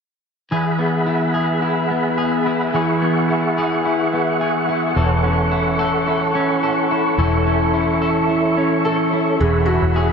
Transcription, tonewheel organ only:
0.51 G#4 E5 F#5 B5
2.76 C#6
4.96 A4 C#5
7.19 E5
9.40 G#4 E5 F#5 B5

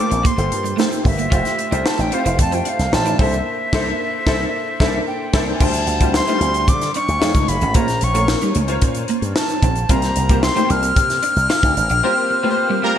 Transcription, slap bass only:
0.11 A#1
0.38 G1
0.52 G2
1.05 G1
1.32 F1
1.72 C2
1.99 A1
2.25 F1
2.39 F2
2.79 C2
2.93 A1
3.19 C2
3.73 C2
4.26 C2
4.80 C2
5.34 C2
5.60 D2
5.87 D2
6.41 D2
6.68 D3
7.08 D2
7.22 F2
7.34 C#2
7.48 F#1
7.62 G#1
7.75 A#1
8.02 A#1
8.55 C#2
8.82 A#2
9.22 G2
9.63 A#1
9.89 C2
10.17 C2
10.70 C2
10.96 C3
11.36 C2
11.63 D2
11.77 A1
11.90 A#1

